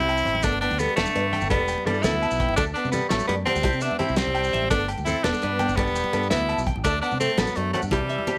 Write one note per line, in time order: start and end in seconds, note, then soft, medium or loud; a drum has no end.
0.00 0.22 C2 medium
0.00 0.11 C4 medium
0.00 0.46 C4 medium
0.00 0.45 E4 loud
0.08 0.18 G5 medium
0.08 closed hi-hat soft
0.08 low agogo medium
0.08 maracas soft
0.17 maracas medium
0.25 0.42 A1 medium
0.25 0.36 G5 medium
0.25 closed hi-hat soft
0.25 low conga medium
0.35 high conga medium
0.35 low conga soft
0.43 0.67 G1 medium
0.43 0.65 A3 medium
0.43 0.62 B3 medium
0.43 0.60 D4 loud
0.43 0.54 A4 medium
0.43 kick medium
0.43 closed hi-hat medium
0.43 muted conga medium
0.43 low agogo medium
0.43 maracas loud
0.52 maracas soft
0.61 0.82 B3 medium
0.61 0.81 D4 medium
0.61 0.72 G5 medium
0.61 closed hi-hat soft
0.61 low agogo medium
0.70 0.86 D2 medium
0.70 high conga medium
0.70 maracas soft
0.79 0.98 G3 medium
0.79 0.96 B3 medium
0.79 0.90 A4 medium
0.79 closed hi-hat soft
0.79 low conga medium
0.79 maracas loud
0.96 1.05 E1 medium
0.96 1.48 D3 medium
0.96 1.46 A3 medium
0.96 1.07 B3 medium
0.96 1.08 A4 medium
0.96 snare medium
0.96 closed hi-hat medium
0.96 muted conga medium
0.96 low agogo medium
0.96 maracas soft
1.05 high conga medium
1.05 maracas medium
1.16 1.38 G2 medium
1.16 1.26 D4 medium
1.16 1.25 B4 medium
1.16 closed hi-hat medium
1.16 low conga soft
1.33 1.43 G5 medium
1.33 closed hi-hat soft
1.33 low conga medium
1.33 low agogo medium
1.33 maracas soft
1.41 1.59 G1 medium
1.41 high conga medium
1.41 maracas medium
1.50 1.88 G3 medium
1.50 1.87 B3 medium
1.50 1.72 D4 medium
1.50 1.61 A4 medium
1.50 kick medium
1.50 closed hi-hat medium
1.50 muted conga medium
1.50 low conga soft
1.50 low agogo medium
1.59 1.74 E1 medium
1.59 maracas soft
1.68 1.78 G5 medium
1.68 closed hi-hat soft
1.68 maracas medium
1.78 high conga medium
1.86 2.05 G2 medium
1.86 2.06 E3 medium
1.86 2.04 G3 medium
1.86 1.97 B3 medium
1.86 1.96 A4 medium
1.86 closed hi-hat medium
1.86 low conga loud
1.86 low agogo medium
1.94 low conga soft
1.94 maracas soft
2.03 2.27 D2 medium
2.03 2.57 B3 medium
2.03 2.26 B3 medium
2.03 2.56 E4 loud
2.03 2.15 A4 medium
2.03 snare medium
2.03 closed hi-hat medium
2.03 muted conga medium
2.03 maracas medium
2.14 high conga medium
2.14 low conga soft
2.22 2.32 A5 medium
2.22 closed hi-hat soft
2.22 low agogo medium
2.31 2.46 B1 medium
2.31 maracas medium
2.40 2.50 G5 medium
2.40 kick medium
2.40 closed hi-hat soft
2.40 low conga medium
2.49 2.57 G1 medium
2.49 high conga medium
2.56 2.73 D2 medium
2.56 2.65 A3 medium
2.56 2.78 A3 medium
2.56 2.65 D4 medium
2.56 2.67 A4 loud
2.56 kick medium
2.56 closed hi-hat soft
2.56 muted conga loud
2.56 low agogo medium
2.56 maracas medium
2.66 maracas soft
2.74 2.93 B3 medium
2.74 2.91 D4 medium
2.74 closed hi-hat soft
2.74 low agogo medium
2.84 3.00 C3 medium
2.84 high conga medium
2.84 maracas soft
2.92 3.10 G3 medium
2.92 3.09 B3 medium
2.92 3.03 A4 medium
2.92 closed hi-hat medium
2.92 low conga medium
2.92 maracas loud
3.02 maracas soft
3.09 3.19 A1 medium
3.09 3.27 F#3 medium
3.09 3.27 A3 medium
3.09 3.21 B3 medium
3.09 3.21 A4 medium
3.09 snare medium
3.09 closed hi-hat medium
3.09 muted conga medium
3.09 low agogo medium
3.19 high conga medium
3.19 maracas medium
3.27 3.44 F#2 loud
3.27 3.37 G3 medium
3.27 3.39 A3 medium
3.27 3.36 B3 medium
3.27 3.39 D5 medium
3.27 closed hi-hat medium
3.27 low conga soft
3.46 3.83 G3 medium
3.46 3.83 C4 medium
3.46 3.57 C4 medium
3.46 3.57 F#5 medium
3.46 closed hi-hat medium
3.46 low conga medium
3.46 low agogo medium
3.46 maracas soft
3.56 3.63 D2 medium
3.56 high conga medium
3.56 maracas medium
3.63 3.72 C2 medium
3.63 3.84 E4 medium
3.63 3.74 G4 medium
3.63 kick medium
3.63 closed hi-hat medium
3.63 muted conga medium
3.63 low conga soft
3.63 low agogo medium
3.73 3.89 C3 medium
3.73 maracas soft
3.81 3.98 B3 medium
3.81 3.99 D4 medium
3.81 3.92 E5 medium
3.81 closed hi-hat medium
3.81 maracas medium
3.91 high conga medium
3.99 4.18 C4 medium
3.99 4.10 C4 medium
3.99 4.19 E4 medium
3.99 4.10 G4 medium
3.99 closed hi-hat medium
3.99 low conga loud
3.99 low agogo medium
4.08 4.25 C2 medium
4.08 low conga soft
4.08 maracas soft
4.16 4.70 G3 medium
4.16 4.38 C4 medium
4.16 4.70 C4 loud
4.16 4.27 G4 medium
4.16 snare medium
4.16 closed hi-hat medium
4.16 muted conga medium
4.16 maracas medium
4.27 4.49 C2 medium
4.27 high conga medium
4.27 low conga soft
4.35 4.45 G5 medium
4.35 closed hi-hat soft
4.35 low conga soft
4.35 low agogo medium
4.44 maracas medium
4.53 4.68 A1 medium
4.53 4.63 E5 medium
4.53 closed hi-hat medium
4.53 low conga medium
4.63 high conga medium
4.70 4.94 G1 medium
4.70 4.92 A3 medium
4.70 4.87 B3 medium
4.70 4.87 D4 loud
4.70 4.81 A4 loud
4.70 kick medium
4.70 closed hi-hat medium
4.70 muted conga medium
4.70 low agogo medium
4.70 maracas medium
4.80 maracas soft
4.88 4.99 G5 medium
4.88 closed hi-hat medium
4.88 low agogo medium
4.98 5.13 D2 medium
4.98 high conga medium
4.98 maracas soft
5.05 5.26 C4 medium
5.05 5.25 E4 medium
5.05 5.17 A4 medium
5.05 closed hi-hat medium
5.05 low conga medium
5.05 maracas loud
5.24 5.32 E1 medium
5.24 5.78 B3 medium
5.24 5.35 B3 loud
5.24 5.78 D4 medium
5.24 5.35 A4 medium
5.24 snare medium
5.24 closed hi-hat medium
5.24 muted conga medium
5.24 low agogo medium
5.24 maracas soft
5.33 high conga medium
5.33 maracas medium
5.41 5.66 G2 medium
5.41 5.53 D4 medium
5.41 5.53 B4 medium
5.41 closed hi-hat soft
5.41 low conga soft
5.59 5.71 B3 medium
5.59 5.70 G5 medium
5.59 closed hi-hat soft
5.59 low conga loud
5.59 low agogo medium
5.59 maracas soft
5.68 5.88 G1 medium
5.68 high conga medium
5.68 maracas medium
5.77 6.31 G3 medium
5.77 6.30 B3 medium
5.77 5.99 D4 medium
5.77 5.88 A4 medium
5.77 kick medium
5.77 closed hi-hat medium
5.77 muted conga medium
5.77 low conga soft
5.77 low agogo medium
5.87 6.02 E1 medium
5.87 maracas soft
5.95 6.06 G5 medium
5.95 closed hi-hat soft
5.95 maracas medium
6.04 high conga medium
6.13 6.33 G2 medium
6.13 6.25 B3 medium
6.13 6.23 A4 medium
6.13 closed hi-hat soft
6.13 low conga loud
6.13 low agogo medium
6.22 low conga soft
6.22 maracas soft
6.30 6.54 D2 medium
6.30 6.65 B3 medium
6.30 6.53 B3 medium
6.30 6.64 E4 medium
6.30 6.41 A4 medium
6.30 snare medium
6.30 closed hi-hat medium
6.30 muted conga medium
6.30 maracas medium
6.41 high conga medium
6.41 low conga soft
6.49 6.59 A5 medium
6.49 closed hi-hat soft
6.49 low conga soft
6.49 low agogo medium
6.58 6.73 B1 medium
6.58 maracas medium
6.67 6.77 G5 medium
6.67 kick medium
6.67 closed hi-hat soft
6.67 low conga medium
6.76 6.83 A1 medium
6.76 high conga medium
6.84 7.00 D2 medium
6.84 7.01 A3 medium
6.84 7.01 D4 loud
6.84 6.95 A4 medium
6.84 muted steel-string acoustic guitar stroke medium
6.84 kick medium
6.84 closed hi-hat medium
6.84 muted conga medium
6.84 low agogo medium
6.84 maracas medium
7.02 7.19 B3 medium
7.02 7.19 D4 medium
7.02 7.13 F#5 medium
7.02 closed hi-hat soft
7.02 low agogo medium
7.02 maracas soft
7.11 7.27 C3 medium
7.11 high conga medium
7.11 maracas soft
7.20 7.39 A3 medium
7.20 7.41 C4 medium
7.20 7.31 A4 medium
7.20 closed hi-hat soft
7.20 low conga medium
7.20 maracas loud
7.30 maracas soft
7.38 7.46 A1 medium
7.38 7.56 F#3 medium
7.38 7.49 B3 medium
7.38 7.58 B3 medium
7.38 7.49 A4 medium
7.38 snare medium
7.38 closed hi-hat medium
7.38 muted conga medium
7.38 low conga soft
7.38 low agogo medium
7.47 high conga medium
7.47 maracas medium
7.56 7.72 F#2 loud
7.56 7.73 F#3 medium
7.56 7.73 A3 medium
7.56 7.67 D4 medium
7.56 muted clean electric guitar stroke medium
7.56 closed hi-hat medium
7.56 maracas soft
7.73 7.81 F#3 medium
7.73 7.82 A3 medium
7.73 7.85 C4 medium
7.73 7.84 F#5 medium
7.73 closed hi-hat medium
7.73 low conga medium
7.73 low agogo medium
7.82 7.90 G2 medium
7.82 high conga medium
7.82 maracas medium
7.91 7.99 C2 loud
7.91 8.38 E3 medium
7.91 8.38 G3 medium
7.91 8.13 E4 medium
7.91 8.02 G4 medium
7.91 kick medium
7.91 closed hi-hat medium
7.91 muted conga medium
7.91 low agogo medium
8.01 8.16 C3 medium
8.09 8.20 E5 medium
8.09 closed hi-hat medium
8.18 high conga medium
8.27 8.38 C4 medium
8.27 8.38 G4 medium
8.27 closed hi-hat medium
8.27 low conga medium
8.27 low agogo medium
8.27 maracas soft